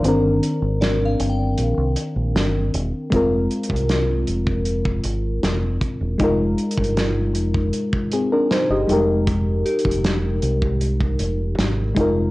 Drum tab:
HH |x-----x-----x-----x-----x-----x-----x-----x-----|x-----x-x-x-x-----x-----x-----x-----x-----x-----|x-----x-x-x-x-----x-----x-----x-----x-----x-----|x-----x-x-x-x-----x-----x-----x-----x-----x-----|
SD |------------o-----------------------o-----------|------------o-----------------------o-----------|------------o-----------------------o-----------|------------o-----------------------o-----------|
BD |------------------------------------------------|o--------o-----------o-----o--------------o-----|o--------o-----------o-----o--------------------|o--------o-----------o-----o--------------o-----|